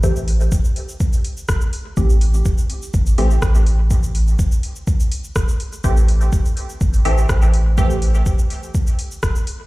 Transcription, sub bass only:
\new Staff \with { instrumentName = "Sub bass" } { \clef bass \time 4/4 \key a \minor \tempo 4 = 124 a,,4 r2 e,,8 r8 | a,,4 r4 g,,8 a,,8 a,,4~ | a,,4 r2 e,,8 r8 | a,,4 r4 g,,8 a,,8 a,,4~ |
a,,4 r2 e,,8 r8 | }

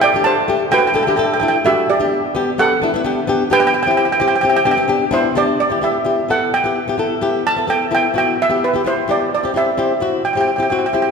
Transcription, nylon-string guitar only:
\new Staff \with { instrumentName = "Nylon-string guitar" } { \time 4/4 \key e \minor \tempo 4 = 129 r16 <a d' g'>8 r16 <a d' g'>16 r16 <a d' fis'>16 r16 <a d' a'>16 <a d' g'>16 <a d' a'>16 r16 <a d' e'>16 r16 <a d' fis'>8 | r16 <b d' g'>8 r16 <b d' g'>16 r16 <b d' g'>16 r16 <b d' e'>16 <b d' e'>16 <b d' g'>16 r16 <b d' g'>16 r16 <b d' g'>8 | r16 <c' e' g'>8 r16 <c' e' g'>16 r16 <c' e' g'>16 r16 <b d' g'>16 <b d' g'>16 <b d' g'>16 r16 <b d' e'>16 r16 <b d' g'>8 | r16 <b e' g'>16 <b e' g'>16 r16 <b e' g'>16 r16 <b e' a'>8 r16 <b e' g'>16 r16 <b e' g'>16 <b e' a'>16 r16 <b e' g'>8 |
r16 <b e' a'>16 <b e' a'>16 r16 <b e' a'>16 r16 <b e' fis'>8 r16 <b e' g'>16 r16 <b e' g'>16 <b e' g'>16 r16 <b e' g'>8 | r16 <c' e' g'>16 <c' e' g'>16 r16 <c' e' g'>16 r16 <c' e' fis'>8 r16 <c' e' g'>16 r16 <c' e' g'>16 <c' e' fis'>16 r16 <c' e' g'>8 | }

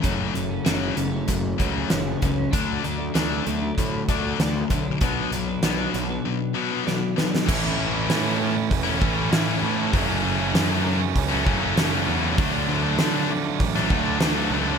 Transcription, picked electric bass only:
\new Staff \with { instrumentName = "Picked electric bass" } { \clef bass \time 4/4 \key a \major \tempo 4 = 98 fis,,8 fis,,8 fis,,8 fis,,8 fis,,8 cis,8 fis,,8 cis,8 | d,8 d,8 d,8 d,8 a,8 d,8 d,8 b,,8 | b,,8 b,,8 b,,8 b,,8 r2 | a,,4 a,4 e,,8 a,,8 a,,8 a,8 |
fis,,4 fis,4 cis,8 fis,,8 fis,,8 e,8 | d,4 d4 a,,8 d,8 d,8 cis,8 | }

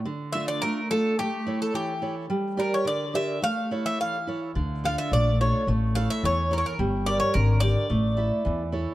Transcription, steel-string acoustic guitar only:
\new Staff \with { instrumentName = "Steel-string acoustic guitar" } { \time 2/4 \key d \minor \tempo 4 = 107 d8 <a d' f'>8 a8 <a d' f'>8 | a8 <e' a' cis''>8 e8 <e' a' cis''>8 | g8 <g' bes' d''>8 d8 <g' bes' d''>8 | a8 <e' a' cis''>8 e8 <e' a' cis''>8 |
d8 <d' f' a'>8 a8 <d' f' a'>8 | a8 <e' a' cis''>8 e8 <e' a' cis''>8 | g8 <g' bes' d''>8 d8 <g' bes' d''>8 | a8 <e' a' e''>8 e8 <e' a' cis''>8 | }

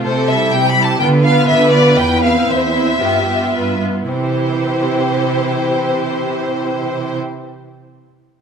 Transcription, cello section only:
\new Staff \with { instrumentName = "Cello section" } { \clef bass \time 4/4 \key c \major \tempo 4 = 111 c4 c4 d4 d4 | e,4 e,4 g,4 g,4 | c1~ | c1 | }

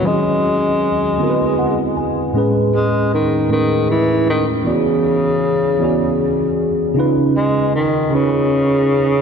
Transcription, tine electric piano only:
\new Staff \with { instrumentName = "Tine electric piano" } { \time 6/8 \key e \major \tempo 4. = 52 << { r2 fis''8 gis''8 | r2. | r2. | r2. | } \\ { <dis fis cis' f' fis' dis''>4 r8 <d b c' e' fis' ais' b'>4 r8 | <a, gis cis' gis' b'>4 r8 <a, a cis' gis' b'>4 r8 | <e b fis' gis' d''>4 r8 <e b fis' gis' d''>4 r8 | <cis cis' dis' eis' b'>4 r8 <cis cis' dis' eis' b'>4 r8 | } >> }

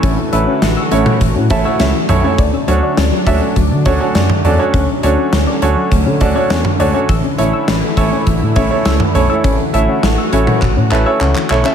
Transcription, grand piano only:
\new Staff \with { instrumentName = "Grand piano" } { \time 4/4 \key a \major \tempo 4 = 102 << { r2 r8 a''16 fis''16 e''4 | r1 | r1 | r1 |
r1 | } \\ { <a cis' e' a' cis''>16 r16 <a cis' e' a' b'>8 r8 <a cis' e' a' cis''>8 r8 <a cis' e' a' e''>16 <a cis' e' a' cis''>8 r16 <a cis' e' a' cis''>16 <a cis' e' a' cis''>16 | r8 <cis' d' fis' a' cis''>8 r8 <cis' d' fis' a' e''>8 r8 <cis' d' fis' a' cis''>16 <cis' d' fis' a' cis''>8 r16 <cis' d' fis' a' d''>16 <cis' d' fis' a' cis''>16~ | <cis' d' fis' a' cis''>16 r16 <cis' d' fis' a' cis''>8 r8 <cis' d' fis' a' cis''>8 r8 <cis' d' fis' a' d''>16 <cis' d' fis' a' cis''>8 r16 <cis' d' fis' a' cis''>16 <cis' d' fis' a' cis''>16 | r8 <a cis' e' a' cis''>8 r8 <a cis' e' a' cis''>8 r8 <a cis' e' a' cis''>16 <a cis' e' a' cis''>8 r16 <a cis' e' a' cis''>16 <a cis' e' a' cis''>16~ |
<a cis' e' a' cis''>16 r16 <a cis' e' a' e''>8 r8 <a cis' e' a' cis''>8 r8 <a cis' e' a' b'>16 <a cis' e' a' cis''>8 r16 <a cis' e' a' cis''>16 <a cis' e' a' e''>16 | } >> }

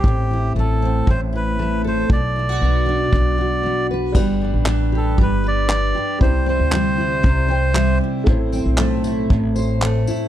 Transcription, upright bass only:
\new Staff \with { instrumentName = "Upright bass" } { \clef bass \time 4/4 \key g \major \tempo 4 = 117 a,,4 a,,4 a,,2 | b,,4 b,,4 b,,2 | g,,8. a,,4~ a,,16 g,,4. r8 | c,8. d,4~ d,16 c,4. r8 |
a,,8. b,,4~ b,,16 a,,4. r8 | }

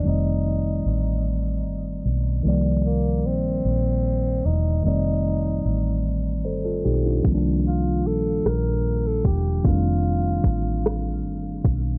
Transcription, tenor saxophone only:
\new Staff \with { instrumentName = "Tenor saxophone" } { \time 6/8 \key f \mixolydian \tempo 4. = 50 ees'4. r4. | r8 bes8 c'4. ees'8 | ees'4. r4. | r8 f'8 a'8 bes'8. a'16 g'8 |
f'2 r4 | }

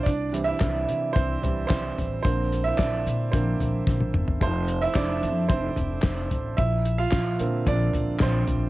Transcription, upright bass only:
\new Staff \with { instrumentName = "Upright bass" } { \clef bass \time 4/4 \key bes \lydian \tempo 4 = 110 c,4 c,8 c8 c,8 c,8 c,8 a,,8 | bes,,4 r8 bes,8 bes,,8 bes,,8 bes,,8 g,,8 | f,,4 f,,8 f,8 f,,8 f,,8 f,,8 a,,8 | bes,,4 bes,,8 bes,8 bes,,8 bes,,8 bes,,8 bes,,8 | }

